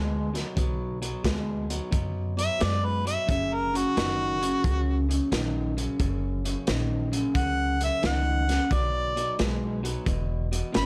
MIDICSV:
0, 0, Header, 1, 5, 480
1, 0, Start_track
1, 0, Key_signature, 2, "minor"
1, 0, Tempo, 678733
1, 402, Time_signature, 4, 2, 24, 8
1, 7679, End_track
2, 0, Start_track
2, 0, Title_t, "Harmonica"
2, 0, Program_c, 0, 22
2, 1696, Note_on_c, 0, 76, 93
2, 1854, Note_on_c, 0, 74, 83
2, 1865, Note_off_c, 0, 76, 0
2, 2014, Note_on_c, 0, 71, 72
2, 2025, Note_off_c, 0, 74, 0
2, 2165, Note_off_c, 0, 71, 0
2, 2171, Note_on_c, 0, 76, 85
2, 2323, Note_off_c, 0, 76, 0
2, 2338, Note_on_c, 0, 76, 80
2, 2502, Note_on_c, 0, 70, 74
2, 2512, Note_off_c, 0, 76, 0
2, 2661, Note_on_c, 0, 66, 91
2, 2672, Note_off_c, 0, 70, 0
2, 3584, Note_off_c, 0, 66, 0
2, 5207, Note_on_c, 0, 78, 83
2, 5519, Note_off_c, 0, 78, 0
2, 5544, Note_on_c, 0, 76, 82
2, 5686, Note_off_c, 0, 76, 0
2, 5703, Note_on_c, 0, 78, 80
2, 6174, Note_on_c, 0, 74, 84
2, 6184, Note_off_c, 0, 78, 0
2, 6632, Note_off_c, 0, 74, 0
2, 7612, Note_on_c, 0, 83, 95
2, 7679, Note_off_c, 0, 83, 0
2, 7679, End_track
3, 0, Start_track
3, 0, Title_t, "Clean electric guitar"
3, 0, Program_c, 1, 27
3, 0, Note_on_c, 1, 47, 85
3, 0, Note_on_c, 1, 56, 98
3, 211, Note_off_c, 1, 47, 0
3, 212, Note_off_c, 1, 56, 0
3, 238, Note_on_c, 1, 47, 67
3, 246, Note_on_c, 1, 54, 78
3, 382, Note_off_c, 1, 47, 0
3, 386, Note_off_c, 1, 54, 0
3, 396, Note_on_c, 1, 47, 74
3, 401, Note_on_c, 1, 54, 81
3, 691, Note_off_c, 1, 47, 0
3, 694, Note_off_c, 1, 54, 0
3, 720, Note_on_c, 1, 47, 65
3, 721, Note_on_c, 1, 54, 85
3, 864, Note_off_c, 1, 47, 0
3, 864, Note_off_c, 1, 54, 0
3, 875, Note_on_c, 1, 47, 74
3, 881, Note_on_c, 1, 56, 78
3, 1171, Note_off_c, 1, 47, 0
3, 1174, Note_off_c, 1, 56, 0
3, 1205, Note_on_c, 1, 54, 89
3, 1206, Note_on_c, 1, 47, 72
3, 1344, Note_off_c, 1, 47, 0
3, 1347, Note_off_c, 1, 54, 0
3, 1353, Note_on_c, 1, 47, 75
3, 1355, Note_on_c, 1, 54, 74
3, 1650, Note_off_c, 1, 47, 0
3, 1651, Note_off_c, 1, 54, 0
3, 1677, Note_on_c, 1, 47, 67
3, 1687, Note_on_c, 1, 54, 66
3, 1823, Note_off_c, 1, 47, 0
3, 1828, Note_off_c, 1, 54, 0
3, 1835, Note_on_c, 1, 47, 78
3, 1841, Note_on_c, 1, 56, 84
3, 2131, Note_off_c, 1, 47, 0
3, 2134, Note_off_c, 1, 56, 0
3, 2160, Note_on_c, 1, 47, 63
3, 2161, Note_on_c, 1, 54, 80
3, 2305, Note_off_c, 1, 47, 0
3, 2305, Note_off_c, 1, 54, 0
3, 2311, Note_on_c, 1, 42, 75
3, 2318, Note_on_c, 1, 49, 93
3, 2609, Note_off_c, 1, 42, 0
3, 2612, Note_off_c, 1, 49, 0
3, 2643, Note_on_c, 1, 42, 69
3, 2643, Note_on_c, 1, 49, 80
3, 2786, Note_off_c, 1, 42, 0
3, 2786, Note_off_c, 1, 49, 0
3, 2793, Note_on_c, 1, 42, 74
3, 2798, Note_on_c, 1, 51, 84
3, 3090, Note_off_c, 1, 42, 0
3, 3093, Note_off_c, 1, 51, 0
3, 3121, Note_on_c, 1, 42, 72
3, 3124, Note_on_c, 1, 49, 89
3, 3265, Note_off_c, 1, 42, 0
3, 3266, Note_off_c, 1, 49, 0
3, 3279, Note_on_c, 1, 42, 73
3, 3285, Note_on_c, 1, 49, 80
3, 3573, Note_off_c, 1, 42, 0
3, 3576, Note_off_c, 1, 49, 0
3, 3598, Note_on_c, 1, 42, 58
3, 3603, Note_on_c, 1, 49, 78
3, 3743, Note_off_c, 1, 42, 0
3, 3746, Note_off_c, 1, 49, 0
3, 3759, Note_on_c, 1, 42, 84
3, 3761, Note_on_c, 1, 51, 91
3, 4053, Note_off_c, 1, 42, 0
3, 4054, Note_off_c, 1, 51, 0
3, 4081, Note_on_c, 1, 42, 76
3, 4085, Note_on_c, 1, 49, 74
3, 4224, Note_off_c, 1, 42, 0
3, 4226, Note_off_c, 1, 49, 0
3, 4239, Note_on_c, 1, 42, 82
3, 4245, Note_on_c, 1, 49, 81
3, 4533, Note_off_c, 1, 42, 0
3, 4536, Note_off_c, 1, 49, 0
3, 4560, Note_on_c, 1, 42, 76
3, 4566, Note_on_c, 1, 49, 76
3, 4704, Note_off_c, 1, 42, 0
3, 4707, Note_off_c, 1, 49, 0
3, 4720, Note_on_c, 1, 42, 76
3, 4724, Note_on_c, 1, 51, 81
3, 5013, Note_off_c, 1, 42, 0
3, 5015, Note_off_c, 1, 51, 0
3, 5033, Note_on_c, 1, 42, 83
3, 5040, Note_on_c, 1, 49, 87
3, 5180, Note_off_c, 1, 42, 0
3, 5184, Note_off_c, 1, 49, 0
3, 5197, Note_on_c, 1, 42, 79
3, 5201, Note_on_c, 1, 49, 84
3, 5491, Note_off_c, 1, 42, 0
3, 5493, Note_off_c, 1, 49, 0
3, 5528, Note_on_c, 1, 42, 61
3, 5532, Note_on_c, 1, 49, 75
3, 5665, Note_off_c, 1, 42, 0
3, 5669, Note_off_c, 1, 49, 0
3, 5674, Note_on_c, 1, 42, 85
3, 5676, Note_on_c, 1, 51, 98
3, 5969, Note_off_c, 1, 42, 0
3, 5970, Note_off_c, 1, 51, 0
3, 5999, Note_on_c, 1, 42, 65
3, 6004, Note_on_c, 1, 49, 87
3, 6142, Note_off_c, 1, 42, 0
3, 6145, Note_off_c, 1, 49, 0
3, 6160, Note_on_c, 1, 47, 69
3, 6167, Note_on_c, 1, 54, 85
3, 6452, Note_off_c, 1, 47, 0
3, 6455, Note_off_c, 1, 54, 0
3, 6480, Note_on_c, 1, 47, 72
3, 6484, Note_on_c, 1, 54, 73
3, 6622, Note_off_c, 1, 47, 0
3, 6624, Note_off_c, 1, 54, 0
3, 6640, Note_on_c, 1, 47, 68
3, 6642, Note_on_c, 1, 56, 81
3, 6931, Note_off_c, 1, 47, 0
3, 6932, Note_off_c, 1, 56, 0
3, 6953, Note_on_c, 1, 47, 76
3, 6957, Note_on_c, 1, 54, 77
3, 7098, Note_off_c, 1, 47, 0
3, 7100, Note_off_c, 1, 54, 0
3, 7110, Note_on_c, 1, 40, 84
3, 7116, Note_on_c, 1, 47, 91
3, 7405, Note_off_c, 1, 40, 0
3, 7408, Note_off_c, 1, 47, 0
3, 7436, Note_on_c, 1, 40, 71
3, 7440, Note_on_c, 1, 47, 77
3, 7576, Note_off_c, 1, 40, 0
3, 7581, Note_off_c, 1, 47, 0
3, 7585, Note_on_c, 1, 40, 91
3, 7589, Note_on_c, 1, 49, 93
3, 7679, Note_off_c, 1, 40, 0
3, 7679, Note_off_c, 1, 49, 0
3, 7679, End_track
4, 0, Start_track
4, 0, Title_t, "Upright bass"
4, 0, Program_c, 2, 32
4, 0, Note_on_c, 2, 38, 80
4, 304, Note_off_c, 2, 38, 0
4, 402, Note_on_c, 2, 35, 87
4, 784, Note_off_c, 2, 35, 0
4, 879, Note_on_c, 2, 38, 91
4, 1262, Note_off_c, 2, 38, 0
4, 1362, Note_on_c, 2, 42, 87
4, 1744, Note_off_c, 2, 42, 0
4, 1855, Note_on_c, 2, 42, 84
4, 2231, Note_off_c, 2, 42, 0
4, 2325, Note_on_c, 2, 30, 88
4, 2705, Note_off_c, 2, 30, 0
4, 2810, Note_on_c, 2, 30, 78
4, 3188, Note_off_c, 2, 30, 0
4, 3284, Note_on_c, 2, 37, 89
4, 3665, Note_off_c, 2, 37, 0
4, 3762, Note_on_c, 2, 34, 84
4, 4143, Note_off_c, 2, 34, 0
4, 4241, Note_on_c, 2, 30, 80
4, 4622, Note_off_c, 2, 30, 0
4, 4726, Note_on_c, 2, 34, 89
4, 5105, Note_off_c, 2, 34, 0
4, 5197, Note_on_c, 2, 37, 72
4, 5579, Note_off_c, 2, 37, 0
4, 5684, Note_on_c, 2, 37, 88
4, 6063, Note_off_c, 2, 37, 0
4, 6161, Note_on_c, 2, 35, 83
4, 6541, Note_off_c, 2, 35, 0
4, 6645, Note_on_c, 2, 35, 92
4, 7023, Note_off_c, 2, 35, 0
4, 7119, Note_on_c, 2, 28, 80
4, 7499, Note_off_c, 2, 28, 0
4, 7608, Note_on_c, 2, 31, 90
4, 7679, Note_off_c, 2, 31, 0
4, 7679, End_track
5, 0, Start_track
5, 0, Title_t, "Drums"
5, 248, Note_on_c, 9, 42, 55
5, 253, Note_on_c, 9, 38, 30
5, 319, Note_off_c, 9, 42, 0
5, 324, Note_off_c, 9, 38, 0
5, 402, Note_on_c, 9, 36, 97
5, 405, Note_on_c, 9, 42, 78
5, 473, Note_off_c, 9, 36, 0
5, 476, Note_off_c, 9, 42, 0
5, 724, Note_on_c, 9, 42, 52
5, 795, Note_off_c, 9, 42, 0
5, 880, Note_on_c, 9, 36, 75
5, 882, Note_on_c, 9, 42, 89
5, 887, Note_on_c, 9, 38, 104
5, 951, Note_off_c, 9, 36, 0
5, 952, Note_off_c, 9, 42, 0
5, 957, Note_off_c, 9, 38, 0
5, 1204, Note_on_c, 9, 42, 60
5, 1274, Note_off_c, 9, 42, 0
5, 1361, Note_on_c, 9, 36, 106
5, 1362, Note_on_c, 9, 42, 87
5, 1432, Note_off_c, 9, 36, 0
5, 1432, Note_off_c, 9, 42, 0
5, 1687, Note_on_c, 9, 42, 65
5, 1758, Note_off_c, 9, 42, 0
5, 1843, Note_on_c, 9, 42, 82
5, 1848, Note_on_c, 9, 38, 96
5, 1914, Note_off_c, 9, 42, 0
5, 1919, Note_off_c, 9, 38, 0
5, 2170, Note_on_c, 9, 42, 57
5, 2241, Note_off_c, 9, 42, 0
5, 2325, Note_on_c, 9, 36, 106
5, 2326, Note_on_c, 9, 42, 78
5, 2395, Note_off_c, 9, 36, 0
5, 2397, Note_off_c, 9, 42, 0
5, 2654, Note_on_c, 9, 42, 55
5, 2725, Note_off_c, 9, 42, 0
5, 2808, Note_on_c, 9, 42, 76
5, 2813, Note_on_c, 9, 38, 103
5, 2879, Note_off_c, 9, 42, 0
5, 2884, Note_off_c, 9, 38, 0
5, 3130, Note_on_c, 9, 42, 59
5, 3201, Note_off_c, 9, 42, 0
5, 3283, Note_on_c, 9, 36, 107
5, 3284, Note_on_c, 9, 42, 72
5, 3354, Note_off_c, 9, 36, 0
5, 3355, Note_off_c, 9, 42, 0
5, 3612, Note_on_c, 9, 42, 59
5, 3682, Note_off_c, 9, 42, 0
5, 3763, Note_on_c, 9, 42, 79
5, 3767, Note_on_c, 9, 38, 100
5, 3833, Note_off_c, 9, 42, 0
5, 3838, Note_off_c, 9, 38, 0
5, 4087, Note_on_c, 9, 42, 49
5, 4157, Note_off_c, 9, 42, 0
5, 4240, Note_on_c, 9, 42, 82
5, 4241, Note_on_c, 9, 36, 104
5, 4311, Note_off_c, 9, 42, 0
5, 4312, Note_off_c, 9, 36, 0
5, 4564, Note_on_c, 9, 42, 56
5, 4635, Note_off_c, 9, 42, 0
5, 4717, Note_on_c, 9, 42, 83
5, 4722, Note_on_c, 9, 38, 106
5, 4788, Note_off_c, 9, 42, 0
5, 4793, Note_off_c, 9, 38, 0
5, 5042, Note_on_c, 9, 42, 60
5, 5113, Note_off_c, 9, 42, 0
5, 5198, Note_on_c, 9, 36, 100
5, 5200, Note_on_c, 9, 42, 75
5, 5269, Note_off_c, 9, 36, 0
5, 5271, Note_off_c, 9, 42, 0
5, 5521, Note_on_c, 9, 42, 60
5, 5591, Note_off_c, 9, 42, 0
5, 5679, Note_on_c, 9, 42, 76
5, 5684, Note_on_c, 9, 38, 92
5, 5749, Note_off_c, 9, 42, 0
5, 5754, Note_off_c, 9, 38, 0
5, 6004, Note_on_c, 9, 42, 60
5, 6009, Note_on_c, 9, 38, 30
5, 6074, Note_off_c, 9, 42, 0
5, 6079, Note_off_c, 9, 38, 0
5, 6159, Note_on_c, 9, 36, 102
5, 6162, Note_on_c, 9, 42, 77
5, 6229, Note_off_c, 9, 36, 0
5, 6233, Note_off_c, 9, 42, 0
5, 6485, Note_on_c, 9, 42, 51
5, 6556, Note_off_c, 9, 42, 0
5, 6641, Note_on_c, 9, 42, 79
5, 6646, Note_on_c, 9, 38, 109
5, 6711, Note_off_c, 9, 42, 0
5, 6716, Note_off_c, 9, 38, 0
5, 6965, Note_on_c, 9, 42, 58
5, 7036, Note_off_c, 9, 42, 0
5, 7117, Note_on_c, 9, 36, 106
5, 7118, Note_on_c, 9, 42, 75
5, 7188, Note_off_c, 9, 36, 0
5, 7189, Note_off_c, 9, 42, 0
5, 7444, Note_on_c, 9, 42, 64
5, 7515, Note_off_c, 9, 42, 0
5, 7597, Note_on_c, 9, 42, 75
5, 7602, Note_on_c, 9, 38, 104
5, 7668, Note_off_c, 9, 42, 0
5, 7673, Note_off_c, 9, 38, 0
5, 7679, End_track
0, 0, End_of_file